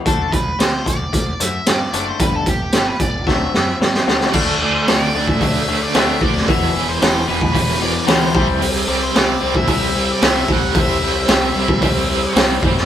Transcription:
<<
  \new Staff \with { instrumentName = "Lead electric guitar" } { \time 4/4 \key d \mixolydian \tempo 4 = 112 a'8 b'8 c''8 d''4 e''8 d''8 d''16 c''16 | b'16 a'16 g'8. b'16 d''8 e''4 r4 | r8 d''16 c''16 d''8. e''16 e''8. d''16 e''8 d''8 | e''8. c''8. b'8 b'8 d''8 c''8. r16 |
r8 d''16 c''16 d''8. e''16 e''8. d''16 e''8 fis''8 | e''2. r4 | }
  \new Staff \with { instrumentName = "Overdriven electric guitar" } { \clef bass \time 4/4 \key d \mixolydian r1 | r1 | <d a d'>8 <d a d'>8 <d a d'>8 <d a d'>8 <d a d'>8 <d a d'>8 <d a d'>8 <d a d'>8 | <e, b, e>8 <e, b, e>8 <e, b, e>8 <e, b, e>8 <e, b, e>8 <e, b, e>8 <e, b, e>8 <c g c'>8 |
<c g c'>8 <c g c'>8 <c g c'>8 <c g c'>8 <c g c'>8 <c g c'>8 <c g c'>8 <c g c'>8 | <c g c'>8 <c g c'>8 <c g c'>8 <c g c'>8 <c g c'>8 <c g c'>8 <c g c'>8 <c g c'>8 | }
  \new Staff \with { instrumentName = "Overdriven electric guitar" } { \clef bass \time 4/4 \key d \mixolydian r1 | r1 | <d a d'>8 <d a d'>8 <d a d'>8 <d a d'>8 <d a d'>8 <d a d'>8 <d a d'>8 <d a d'>8 | <e, b, e>8 <e, b, e>8 <e, b, e>8 <e, b, e>8 <e, b, e>8 <e, b, e>8 <e, b, e>8 <c g c'>8 |
<c g c'>8 <c g c'>8 <c g c'>8 <c g c'>8 <c g c'>8 <c g c'>8 <c g c'>8 <c g c'>8 | <c g c'>8 <c g c'>8 <c g c'>8 <c g c'>8 <c g c'>8 <c g c'>8 <c g c'>8 <c g c'>8 | }
  \new Staff \with { instrumentName = "Clean electric guitar" } { \clef bass \time 4/4 \key d \mixolydian <d a d'>8 <d a>8 <d a>8 <d a>8 <d a>8 <d a>8 <d a>8 <d a d'>8 | <g, d g>8 <g, d>8 <g, d>8 <g, d>8 <d fis a>8 <d fis>8 <d fis>8 <d fis a>8 | <d a d'>8 <d a>8 <d a>8 <d a>8 <d a>8 <d a>8 <d a d'>8 r8 | <e, b, e>8 <e, b,>8 <e, b,>8 <e, b,>8 <e, b,>8 <e, b,>8 <e, b, e>8 <c e g>8 |
r1 | r1 | }
  \new Staff \with { instrumentName = "Picked electric bass" } { \clef bass \time 4/4 \key d \mixolydian d,8 d,8 d,8 d,8 d,8 fis,8 g,8 fis,,8 | g,,8 g,,8 g,,8 g,,8 d,8 fis,8 g,8 d,8 | d,8 d,8 d,8 d,8 d,4 d,8 d,8 | e,,8 e,,8 e,,8 e,,8 e,,4 d,8 c,8 |
c,8 c,8 c,8 c,8 c,4 c,8 c,8 | c,8 c,8 c,8 c,8 c,4 c,8 fis,8 | }
  \new DrumStaff \with { instrumentName = "Drums" } \drummode { \time 4/4 <hh bd>8 <hh bd>8 <hh sn>8 <hh bd>8 <hh bd>8 hh8 <hh sn>8 hh8 | <hh bd>8 <hh bd>8 <hh sn>8 <hh bd>8 <bd sn>8 sn8 sn16 sn16 sn16 sn16 | <cymc bd>4 <hho sn>8. bd16 <hho bd>4 <hho sn>8 bd16 sn16 | <hho bd>4 <hho sn>8. bd16 <hho bd>4 <hho sn>8 bd8 |
hho4 <hho sn>8. bd16 <hho bd>4 <hho sn>8 bd8 | <hho bd>4 <hho sn>8. bd16 <hho bd>4 <hho sn>8 bd16 sn16 | }
>>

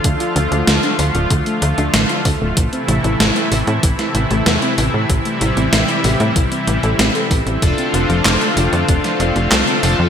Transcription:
<<
  \new Staff \with { instrumentName = "Analog polysynth" } { \time 4/4 \key a \phrygian \tempo 4 = 95 r1 | r1 | r1 | <d' f' a'>2. <d' f' a'>8 <d' f' a'>8 | }
  \new Staff \with { instrumentName = "Analog synth pad" } { \clef bass \time 4/4 \key a \phrygian << { <d f f'>1 | <c e e'>1~ | <c e e'>1 | <d a f'>1 | } \\ { a1~ | a1 | g1 | c'1 | } >> }
  \new Staff \with { instrumentName = "Synth arpeggio sound" } { \clef bass \time 4/4 \key a \phrygian d16 f'16 d16 a16 d16 d'16 d16 f'16 d16 a16 d16 d'16 d16 f'16 d16 a16 | c16 c'16 c16 e'16 c16 a16 c16 c'16 c16 e'16 c16 a16 c16 c'16 c16 e'16 | c16 a16 c16 c'16 c16 e'16 c16 a16 c16 c'16 c16 a'16 c'16 a'16 c'16 c'16 | c16 c'16 c16 f16 c16 a16 c16 c'16 c16 f16 c16 a16 c16 c'16 c16 f16 | }
  \new Staff \with { instrumentName = "Analog synth bass" } { \clef bass \time 4/4 \key a \phrygian d,16 r16 d,16 d,16 d,16 r16 d,16 d,,16 d,16 r16 d,16 d,16 a,,16 r16 d,16 d,,16 | a,,16 r16 a,,16 a,,16 a,,16 r16 a,,16 a,16 a,,16 r16 a,,16 a,,16 e,16 r16 a,,16 a,16 | a,,16 r16 a,,16 a,,16 a,,16 r16 a,,16 a,16 a,,16 r16 a,,16 a,,16 a,,16 r16 a,,16 a,,16 | f,,16 r16 f,,16 f,,16 f,,16 r16 f,,16 f,16 f,,16 r16 f,,16 f,,16 c,16 r16 f,,16 f,16 | }
  \new DrumStaff \with { instrumentName = "Drums" } \drummode { \time 4/4 <hh bd>16 hh16 hh16 hh16 <hh sn>16 hh16 hho16 hh16 <hh bd>16 hh16 hh16 hh16 <hh sn>16 hh16 <hho bd>8 | <hh bd>16 hh16 hh16 hh16 <hh sn>16 hh16 hho16 hh16 <hh bd>16 <hh sn>16 hh16 hh16 <hh sn>16 hh16 hho8 | <hh bd>16 hh16 hh16 hh16 <hh sn>16 hh16 <hho sn>16 hh16 <hh bd>16 hh16 hh16 hh16 <hh sn>16 hh16 <hho bd>16 hh16 | <hh bd>16 hh16 hh16 hh16 <hc hh sn>16 hh16 hho16 hh16 <hh bd>16 <hh sn>16 hh16 hh16 <hc hh sn>16 hh16 hho8 | }
>>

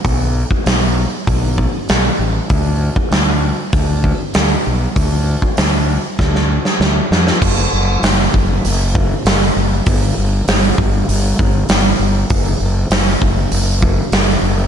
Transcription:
<<
  \new Staff \with { instrumentName = "Fingered electric bass" } { \clef bass \time 4/4 \key fis \phrygian \tempo 4 = 98 b,,4 b,,4 b,,4 b,,8 a,,8 | d,4 d,4 d,4 d,8 b,,8 | d,4 d,4 d,4 d,8 f,8 | fis,,8 fis,,8 fis,,8 fis,,8 fis,,4 fis,,8 fis,,8 |
g,,8 g,,8 g,,8 g,,8 g,,8 g,,8 g,,8 g,,8 | fis,,8 fis,,8 fis,,8 fis,,8 fis,,4 fis,,8 fis,,8 | }
  \new DrumStaff \with { instrumentName = "Drums" } \drummode { \time 4/4 <hho bd>8. bd16 <hho sn>4 <hho bd>8 bd8 <hho sn>4 | <hho bd>8. bd16 <hho sn>4 <hho bd>8 bd8 <hho sn>4 | <hho bd>8. bd16 <hho sn>4 <bd sn>16 sn8 sn16 sn8 sn16 sn16 | <cymc bd>4 <hho sn>16 sn16 bd8 hho8 bd8 <hho sn>16 sn8. |
<hho bd>4 <hho sn>8 bd8 hho8 bd8 <hho sn>4 | <hho bd>4 <hho sn>16 sn16 bd8 hho8 bd8 <hho sn>16 sn8. | }
>>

